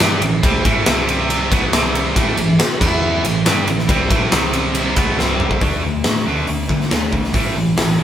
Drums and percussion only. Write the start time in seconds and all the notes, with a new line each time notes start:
0.00 snare, ride
0.22 ride
0.43 kick, ride
0.65 kick, ride
0.86 snare, ride
1.09 ride
1.30 ride
1.52 kick, ride
1.73 snare, ride
1.95 ride
2.16 kick, ride
2.37 ride
2.59 snare, ride
2.81 kick, crash
3.25 ride
3.46 snare, ride
3.67 ride
3.79 snare
3.89 kick, ride
4.11 kick, ride
4.32 snare, ride
4.53 ride
4.75 ride
4.96 kick, ride
5.19 snare
5.40 mid tom
5.51 kick
5.61 kick, open hi-hat
6.04 snare, open hi-hat
6.47 open hi-hat
6.69 kick
6.81 snare
6.91 snare, open hi-hat
7.13 kick
7.24 snare
7.34 kick, open hi-hat
7.77 snare, open hi-hat